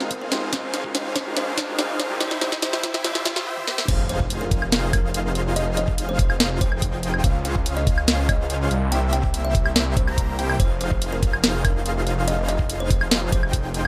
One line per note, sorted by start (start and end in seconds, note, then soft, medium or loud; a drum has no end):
0.00 0.51 F1 medium
0.00 0.51 D#4 medium
0.00 0.51 F4 medium
0.00 0.08 F4 medium
0.00 0.08 G4 medium
0.00 0.51 G#4 medium
0.00 0.09 A#4 loud
0.00 0.51 C5 medium
0.00 0.51 F5 medium
0.00 snare medium
0.00 riser medium
0.11 kick medium
0.11 closed hi-hat medium
0.21 0.41 A#4 medium
0.31 0.50 G#3 medium
0.31 0.50 D#4 medium
0.31 0.50 F4 medium
0.31 0.50 G4 medium
0.31 0.51 C5 loud
0.31 snare medium
0.31 closed hi-hat medium
0.52 0.65 G#3 medium
0.52 0.65 D#4 medium
0.52 0.93 D#4 medium
0.52 0.66 F4 medium
0.52 0.93 F4 medium
0.52 0.66 G4 medium
0.52 0.93 G#4 medium
0.52 0.66 C5 medium
0.52 0.93 C5 medium
0.52 0.66 C5 medium
0.52 0.93 F5 medium
0.52 kick loud
0.52 snare medium
0.52 closed hi-hat medium
0.74 0.93 C5 medium
0.74 snare medium
0.74 closed hi-hat medium
0.83 0.92 G#3 medium
0.83 0.92 D#4 medium
0.83 0.92 F4 medium
0.83 0.92 G4 medium
0.83 0.93 A#4 medium
0.83 kick medium
0.94 1.07 G#3 medium
0.94 1.07 D#4 medium
0.94 1.35 D#4 medium
0.94 1.07 F4 medium
0.94 1.35 F4 medium
0.94 1.08 G4 medium
0.94 1.35 G#4 medium
0.94 1.35 C5 medium
0.94 1.08 C5 loud
0.94 1.08 C5 medium
0.94 1.35 F5 medium
0.94 snare medium
0.94 closed hi-hat medium
1.16 1.35 C5 medium
1.16 kick loud
1.16 snare medium
1.16 closed hi-hat medium
1.25 1.34 G#3 medium
1.25 1.34 D#4 medium
1.25 1.34 F4 medium
1.25 1.34 G4 medium
1.25 1.35 A#4 loud
1.35 1.49 G#3 medium
1.35 1.49 D#4 medium
1.35 1.77 D#4 medium
1.35 1.49 F4 medium
1.35 1.77 F4 medium
1.35 1.50 G4 medium
1.35 1.77 G#4 medium
1.35 1.77 C5 medium
1.35 1.50 C5 medium
1.35 1.77 F5 medium
1.35 snare medium
1.35 closed hi-hat medium
1.58 1.77 C5 medium
1.58 kick loud
1.58 snare medium
1.58 closed hi-hat medium
1.67 1.76 G#3 medium
1.67 1.76 D#4 medium
1.67 1.76 F4 medium
1.67 1.76 G4 medium
1.67 1.77 A#4 loud
1.78 1.91 G#3 medium
1.78 1.91 D#4 medium
1.78 2.19 D#4 medium
1.78 2.19 F4 medium
1.78 1.92 F4 medium
1.78 1.92 G4 medium
1.78 2.19 G#4 medium
1.78 2.19 C5 medium
1.78 1.92 C5 loud
1.78 1.92 C5 medium
1.78 2.19 F5 medium
1.78 snare medium
1.78 closed hi-hat medium
2.00 3.46 C2 medium
2.00 2.19 C5 medium
2.00 snare medium
2.00 closed hi-hat medium
2.09 2.18 G3 medium
2.09 2.18 E4 medium
2.09 2.18 G4 medium
2.09 2.19 A#4 loud
2.19 2.33 G3 medium
2.19 2.33 E4 medium
2.19 2.40 E4 medium
2.19 2.40 G4 medium
2.19 2.34 G4 medium
2.19 2.40 C5 medium
2.19 2.34 C5 loud
2.19 2.34 C5 medium
2.19 2.40 E5 medium
2.19 snare medium
2.19 closed hi-hat medium
2.31 snare medium
2.40 2.54 G3 medium
2.40 2.54 E4 medium
2.40 2.61 E4 medium
2.40 2.61 G4 medium
2.40 2.55 G4 medium
2.40 2.61 C5 medium
2.40 2.55 C5 loud
2.40 2.55 C5 medium
2.40 2.61 E5 medium
2.40 snare medium
2.40 closed hi-hat medium
2.52 kick medium
2.52 snare medium
2.61 2.75 G3 medium
2.61 2.75 E4 medium
2.61 2.82 E4 medium
2.61 2.82 G4 medium
2.61 2.76 G4 medium
2.61 2.82 C5 medium
2.61 2.76 C5 loud
2.61 2.82 E5 medium
2.61 snare loud
2.61 closed hi-hat medium
2.73 snare medium
2.82 2.96 G3 medium
2.82 2.96 E4 medium
2.82 3.03 E4 medium
2.82 3.03 G4 medium
2.82 2.97 G4 medium
2.82 3.03 C5 medium
2.82 2.97 C5 loud
2.82 2.97 C5 medium
2.82 3.03 E5 medium
2.82 kick loud
2.82 snare loud
2.82 closed hi-hat medium
2.94 snare medium
3.03 3.17 G3 medium
3.03 3.17 E4 medium
3.03 3.24 E4 medium
3.03 3.24 G4 medium
3.03 3.18 G4 medium
3.03 3.18 C5 loud
3.03 3.24 C5 medium
3.03 3.18 C5 medium
3.03 3.24 E5 medium
3.03 snare loud
3.03 closed hi-hat medium
3.15 snare medium
3.24 3.38 G3 medium
3.24 3.38 E4 medium
3.24 3.45 E4 medium
3.24 3.45 G4 medium
3.24 3.39 G4 medium
3.24 3.45 C5 medium
3.24 3.39 C5 loud
3.24 3.45 E5 medium
3.24 kick loud
3.24 snare loud
3.24 closed hi-hat medium
3.36 snare medium
3.46 3.66 E4 medium
3.46 3.66 G4 medium
3.46 3.66 C5 medium
3.46 3.66 E5 medium
3.57 high tom medium
3.67 3.87 E4 medium
3.67 3.87 G4 medium
3.67 3.87 C5 medium
3.67 3.87 E5 medium
3.67 snare medium
3.78 snare medium
3.88 7.22 F1 medium
3.88 4.91 D#4 medium
3.88 4.91 F4 medium
3.88 4.91 G#4 medium
3.88 4.02 C5 loud
3.88 4.91 C5 medium
3.88 4.91 F5 medium
3.88 kick loud
3.88 closed hi-hat medium
3.88 crash loud
3.88 impact medium
4.09 4.29 C5 medium
4.09 closed hi-hat medium
4.20 kick medium
4.30 closed hi-hat medium
4.41 4.60 A#4 loud
4.51 kick loud
4.51 closed hi-hat medium
4.62 high woodblock medium
4.72 snare loud
4.72 closed hi-hat medium
4.93 5.54 D#4 loud
4.93 5.54 F4 medium
4.93 5.54 G#4 medium
4.93 5.13 A#4 medium
4.93 5.54 C5 medium
4.93 5.54 F5 loud
4.93 kick loud
4.93 closed hi-hat medium
4.93 high woodblock medium
5.14 closed hi-hat medium
5.35 closed hi-hat medium
5.56 6.59 D#4 medium
5.56 6.59 F4 medium
5.56 6.59 G#4 medium
5.56 6.59 C5 medium
5.56 5.69 D#5 loud
5.56 6.59 F5 loud
5.56 6.59 F5 medium
5.56 closed hi-hat medium
5.77 5.97 D#5 medium
5.77 closed hi-hat medium
5.88 kick medium
5.98 closed hi-hat medium
6.09 6.28 C5 loud
6.19 kick loud
6.19 closed hi-hat medium
6.30 high woodblock medium
6.40 snare loud
6.40 closed hi-hat medium
6.61 7.22 D#4 medium
6.61 7.22 F4 medium
6.61 7.22 G#4 medium
6.61 6.81 C5 loud
6.61 7.22 C5 medium
6.61 7.22 G5 medium
6.61 kick loud
6.61 closed hi-hat medium
6.72 high woodblock medium
6.82 kick medium
6.82 closed hi-hat medium
7.03 closed hi-hat medium
7.14 high woodblock medium
7.24 8.69 C#2 medium
7.24 8.26 C#4 medium
7.24 8.26 F4 medium
7.24 8.26 G#4 medium
7.24 8.26 C5 medium
7.24 7.37 F5 loud
7.24 8.26 F5 medium
7.24 kick loud
7.24 closed hi-hat medium
7.45 7.64 F5 loud
7.45 closed hi-hat medium
7.56 kick medium
7.66 closed hi-hat medium
7.77 7.96 D#5 loud
7.87 kick loud
7.87 closed hi-hat medium
7.98 high woodblock medium
8.08 snare loud
8.08 closed hi-hat medium
8.29 8.70 C#4 loud
8.29 8.70 F4 medium
8.29 8.70 G#4 medium
8.29 8.70 C5 medium
8.29 8.48 D#5 loud
8.29 8.70 F5 loud
8.29 kick loud
8.29 closed hi-hat medium
8.29 high woodblock medium
8.50 closed hi-hat medium
8.71 10.58 C2 medium
8.71 closed hi-hat medium
8.92 9.94 A#3 medium
8.92 9.94 E4 medium
8.92 9.94 G4 medium
8.92 9.94 C5 medium
8.92 9.94 E5 loud
8.92 9.05 G5 loud
8.92 closed hi-hat medium
9.13 9.32 G5 medium
9.13 closed hi-hat medium
9.24 kick medium
9.34 closed hi-hat medium
9.45 9.64 E5 medium
9.55 kick loud
9.55 closed hi-hat medium
9.66 high woodblock medium
9.76 snare loud
9.76 closed hi-hat medium
9.97 10.16 C5 medium
9.97 kick loud
9.97 closed hi-hat medium
10.07 10.36 A#3 medium
10.07 10.36 E4 medium
10.07 10.36 G4 medium
10.07 10.36 C5 medium
10.07 10.36 A#5 medium
10.07 high woodblock medium
10.18 kick medium
10.18 closed hi-hat medium
10.39 10.57 A#3 medium
10.39 10.57 E4 medium
10.39 10.57 G4 medium
10.39 10.57 C5 medium
10.39 10.57 G5 loud
10.39 closed hi-hat medium
10.50 high woodblock medium
10.60 13.87 F1 medium
10.60 11.62 D#4 medium
10.60 11.62 F4 medium
10.60 11.62 G#4 medium
10.60 11.62 C5 medium
10.60 10.73 C5 loud
10.60 11.62 F5 medium
10.60 kick loud
10.60 closed hi-hat medium
10.81 11.00 C5 medium
10.81 closed hi-hat medium
10.91 kick medium
11.02 closed hi-hat medium
11.13 11.32 A#4 loud
11.23 kick loud
11.23 closed hi-hat medium
11.33 high woodblock medium
11.44 snare loud
11.44 closed hi-hat medium
11.65 12.25 D#4 loud
11.65 12.25 F4 medium
11.65 12.25 G#4 medium
11.65 11.84 A#4 medium
11.65 12.25 C5 medium
11.65 12.25 F5 loud
11.65 kick loud
11.65 closed hi-hat medium
11.65 high woodblock medium
11.86 closed hi-hat medium
12.07 closed hi-hat medium
12.27 13.30 D#4 medium
12.27 13.30 F4 medium
12.27 13.30 G#4 medium
12.27 13.30 C5 medium
12.27 12.41 D#5 loud
12.27 13.30 F5 loud
12.27 closed hi-hat medium
12.48 12.68 D#5 medium
12.48 closed hi-hat medium
12.59 kick medium
12.70 closed hi-hat medium
12.80 13.00 C5 loud
12.90 kick loud
12.90 closed hi-hat medium
13.01 high woodblock medium
13.11 snare loud
13.11 closed hi-hat medium
13.32 13.87 D#4 medium
13.32 13.87 F4 medium
13.32 13.87 G#4 medium
13.32 13.87 C5 medium
13.32 13.52 C5 loud
13.32 13.87 G5 medium
13.32 kick loud
13.32 closed hi-hat medium
13.43 high woodblock medium
13.53 kick medium
13.53 closed hi-hat medium
13.74 closed hi-hat medium